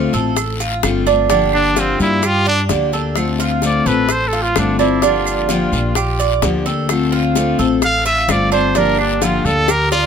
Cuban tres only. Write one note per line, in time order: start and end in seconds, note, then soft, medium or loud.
0.00 0.12 F4 medium
0.14 0.59 A4 medium
0.60 1.05 F4 medium
1.07 1.29 D4 medium
1.30 1.75 D4 medium
1.76 2.22 F4 medium
2.23 2.46 G4 medium
2.46 2.92 D5 medium
2.93 3.38 A4 medium
3.40 3.85 F4 medium
3.86 4.31 A4 medium
4.33 4.78 F4 medium
4.79 5.01 D4 medium
5.02 5.48 D4 medium
5.50 5.95 F4 medium
5.96 6.19 G4 medium
6.19 6.64 D5 medium
6.66 7.11 A4 medium
7.12 7.57 F4 medium
7.59 8.04 A4 medium
8.05 8.51 F4 medium
8.52 8.74 D4 medium
8.75 9.21 D4 medium
9.22 9.67 F4 medium
9.69 9.91 G4 medium
9.92 10.06 D5 medium